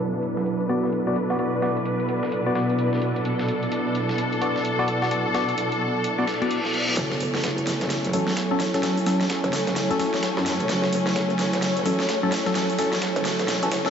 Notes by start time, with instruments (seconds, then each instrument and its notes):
Already playing: string section B2 F#3 D4 B4, analog synth pad B3 E4 A4 B4
0.00 closed hi-hat
0.23 closed hi-hat
0.37 snare
0.46 closed hi-hat
0.60 closed hi-hat
0.69 synth stab B3 F#4 D5, closed hi-hat
0.84 snare
0.93 closed hi-hat
1.01 analog synth pad D5
1.07 synth stab B3 F#4 D5
1.16 closed hi-hat
1.30 synth stab B3 F#4 D5, snare
1.39 synth stab B3 F#4 D5, closed hi-hat
1.62 synth stab B3 F#4 D5, snare, closed hi-hat
1.77 closed hi-hat
1.85 closed hi-hat
2.00 closed hi-hat
2.09 closed hi-hat
2.23 snare
2.32 closed hi-hat
2.46 synth stab B3 F#4 D5
2.55 synth stab B3 F#4 D5, snare, closed hi-hat
2.70 closed hi-hat
2.79 closed hi-hat
2.93 snare
3.02 closed hi-hat
3.16 closed hi-hat
3.25 string section A4, closed hi-hat
3.39 snare
3.48 closed hi-hat
3.63 closed hi-hat
3.72 closed hi-hat
3.95 closed hi-hat
4.09 snare
4.18 closed hi-hat
4.33 closed hi-hat
4.41 synth stab B3 F#4 D5, closed hi-hat
4.56 snare
4.65 closed hi-hat
4.79 synth stab B3 F#4 D5
4.88 closed hi-hat
5.02 synth stab B3 F#4 D5, snare
5.11 synth stab B3 F#4 D5, closed hi-hat
5.34 synth stab B3 F#4 D5, snare, closed hi-hat
5.49 closed hi-hat
5.58 closed hi-hat
5.72 closed hi-hat
6.04 closed hi-hat, reverse cymbal
6.19 synth stab B3 F#4 D5
6.27 snare, closed hi-hat
6.42 synth stab B3 F#4 D5, closed hi-hat
6.51 closed hi-hat
6.65 snare
6.74 closed hi-hat
6.88 closed hi-hat
6.97 wobble bass F#1, string section F#3 A3 C#4, snare, closed hi-hat
7.12 snare
7.20 closed hi-hat, open hi-hat
7.35 snare, closed hi-hat
7.44 wobble bass F#1, snare, closed hi-hat
7.58 closed hi-hat
7.67 snare, closed hi-hat, open hi-hat
7.81 wobble bass F#1, analog synth pad C#5, snare, closed hi-hat
7.90 snare, closed hi-hat
8.04 closed hi-hat
8.13 wobble bass A1, synth stab F#3 C#4 A4, closed hi-hat, open hi-hat
8.28 snare
8.37 snare, closed hi-hat
8.51 synth stab F#3 C#4 A4
8.60 snare, closed hi-hat, open hi-hat
8.74 synth stab F#3 C#4 A4, snare, closed hi-hat
8.83 synth stab F#3 C#4 A4, snare, closed hi-hat
8.97 open hi-hat
9.06 synth stab F#3 C#4 A4, snare, closed hi-hat, open hi-hat
9.21 snare, closed hi-hat
9.30 snare, closed hi-hat
9.44 wobble bass F#1, closed hi-hat
9.53 snare, closed hi-hat, open hi-hat
9.67 wobble bass F#1, snare, closed hi-hat
9.76 snare, closed hi-hat
9.91 synth stab F#3 C#4 A4, closed hi-hat
9.99 synth stab F#3 C#4 A4, snare, closed hi-hat, open hi-hat
10.14 snare, closed hi-hat
10.23 snare, closed hi-hat
10.37 wobble bass F#2, snare
10.46 snare, closed hi-hat, open hi-hat
10.60 wobble bass E1, closed hi-hat
10.69 wobble bass F#1, snare, closed hi-hat
10.84 snare
10.93 closed hi-hat, open hi-hat
11.07 snare, closed hi-hat
11.16 wobble bass F#1, snare, closed hi-hat
11.30 closed hi-hat
11.39 snare, closed hi-hat, open hi-hat
11.53 wobble bass F#1, snare, closed hi-hat
11.62 snare, closed hi-hat
11.77 closed hi-hat
11.86 wobble bass A1, synth stab F#3 C#4 A4, closed hi-hat, open hi-hat
12.00 snare
12.09 snare, closed hi-hat
12.23 synth stab F#3 C#4 A4
12.32 snare, closed hi-hat, open hi-hat
12.46 synth stab F#3 C#4 A4, snare, closed hi-hat
12.55 synth stab F#3 C#4 A4, snare, closed hi-hat
12.70 open hi-hat
12.79 synth stab F#3 C#4 A4, snare, closed hi-hat, open hi-hat
12.93 snare, closed hi-hat
13.02 snare, closed hi-hat
13.16 wobble bass F#1, closed hi-hat
13.25 snare, closed hi-hat, open hi-hat
13.39 wobble bass E1, snare, closed hi-hat
13.48 snare, closed hi-hat
13.63 synth stab F#3 C#4 A4, closed hi-hat
13.72 wobble bass F#1, snare, closed hi-hat, open hi-hat
13.86 synth stab F#3 C#4 A4, snare